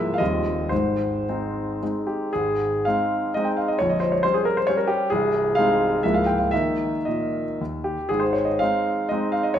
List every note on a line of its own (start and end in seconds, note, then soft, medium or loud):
0.00 0.19 C#1 soft
0.00 0.19 C#2 soft
0.00 0.16 G#3 soft
0.00 0.17 A#3 soft
0.00 0.17 E4 soft
0.00 0.12 E5 medium
0.14 0.21 F5 medium
0.18 0.70 D#1 soft
0.18 0.70 D#2 soft
0.18 0.67 G3 soft
0.18 0.67 C4 soft
0.18 0.68 F4 soft
0.18 0.70 D#5 medium
0.69 1.26 G#1 soft
0.69 1.26 G#2 soft
0.69 1.81 C5 medium
1.29 1.79 G#3 soft
1.29 1.79 C4 soft
1.29 1.79 D#4 soft
1.83 2.30 G#3 soft
1.83 2.30 C4 soft
1.83 2.30 D#4 soft
2.07 2.33 G4 soft
2.33 2.85 G#1 soft
2.33 2.84 G#2 soft
2.33 2.85 G#4 medium
2.85 3.32 G#3 soft
2.85 3.32 C4 soft
2.85 3.32 D#4 soft
2.85 3.35 F5 medium
3.34 3.77 G#3 soft
3.34 3.77 C4 soft
3.34 3.77 D#4 soft
3.34 3.46 D#5 medium
3.45 3.57 G5 medium
3.57 3.68 F5 soft
3.68 3.79 D#5 medium
3.79 4.23 A#0 soft
3.79 4.23 A#1 soft
3.79 3.90 C#5 medium
3.89 4.01 D#5 soft
4.00 4.12 C5 soft
4.12 4.23 C#5 medium
4.23 4.64 G3 soft
4.23 4.64 C#4 soft
4.23 4.34 C5 medium
4.34 4.46 G#4 medium
4.45 4.56 A#4 medium
4.57 4.68 C5 medium
4.67 5.07 G3 soft
4.67 5.07 C#4 soft
4.67 4.78 C#5 medium
4.77 4.88 A#4 medium
4.87 5.10 G4 medium
5.10 5.56 C1 soft
5.10 5.56 C2 medium
5.10 5.57 G#4 medium
5.55 6.00 G#3 soft
5.55 6.00 C4 soft
5.55 6.01 D#4 soft
5.55 6.03 F5 medium
6.03 6.51 C#1 soft
6.03 6.51 C#2 soft
6.03 6.49 G#3 soft
6.03 6.49 A#3 soft
6.03 6.49 E4 soft
6.03 6.15 E5 medium
6.14 6.27 F5 medium
6.26 6.39 G5 medium
6.38 6.51 F5 soft
6.51 6.91 D#3 soft
6.51 6.97 A#3 soft
6.51 6.97 D#4 soft
6.51 7.06 E5 medium
7.05 7.45 A#2 soft
7.05 7.60 D#5 soft
7.61 7.96 D#2 soft
7.84 8.10 G4 medium
8.09 8.59 G#1 soft
8.09 8.59 G#2 soft
8.09 8.22 G#4 medium
8.20 8.34 C5 soft
8.33 8.47 C#5 soft
8.45 8.59 D#5 soft
8.59 9.07 G#3 soft
8.59 9.07 C4 soft
8.59 9.07 D#4 soft
8.59 9.10 F5 medium
9.09 9.52 G#3 soft
9.09 9.52 C4 soft
9.09 9.53 D#4 soft
9.09 9.33 D#5 medium
9.32 9.44 F5 medium
9.43 9.55 D#5 medium
9.54 9.59 C#5 medium